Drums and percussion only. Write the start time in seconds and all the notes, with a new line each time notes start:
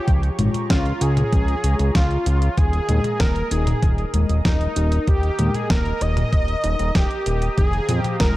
0.08 kick, closed hi-hat
0.23 closed hi-hat
0.39 closed hi-hat, mid tom
0.54 closed hi-hat, mid tom
0.70 kick, snare, closed hi-hat
0.86 closed hi-hat
1.01 closed hi-hat
1.17 closed hi-hat, mid tom
1.33 kick, closed hi-hat
1.48 closed hi-hat
1.64 closed hi-hat
1.79 closed hi-hat
1.95 kick, snare, closed hi-hat
2.11 closed hi-hat
2.26 closed hi-hat
2.42 closed hi-hat
2.58 kick, closed hi-hat
2.73 closed hi-hat
2.89 closed hi-hat, mid tom
3.04 closed hi-hat, mid tom
3.20 kick, snare, closed hi-hat
3.36 closed hi-hat
3.51 closed hi-hat
3.67 closed hi-hat, mid tom
3.83 kick, closed hi-hat
3.98 closed hi-hat
4.14 closed hi-hat
4.29 closed hi-hat
4.45 kick, snare, closed hi-hat
4.61 closed hi-hat
4.76 closed hi-hat
4.92 closed hi-hat
5.07 kick, closed hi-hat
5.23 closed hi-hat
5.39 closed hi-hat, mid tom
5.54 closed hi-hat, mid tom
5.70 kick, snare, closed hi-hat
5.86 closed hi-hat
6.01 closed hi-hat
6.17 closed hi-hat, mid tom
6.33 kick, closed hi-hat
6.48 closed hi-hat
6.64 closed hi-hat
6.79 closed hi-hat
6.95 kick, snare, closed hi-hat
7.11 closed hi-hat
7.26 closed hi-hat
7.42 closed hi-hat
7.58 kick, closed hi-hat
7.73 closed hi-hat
7.89 closed hi-hat, mid tom
8.04 closed hi-hat, mid tom
8.20 kick, snare, closed hi-hat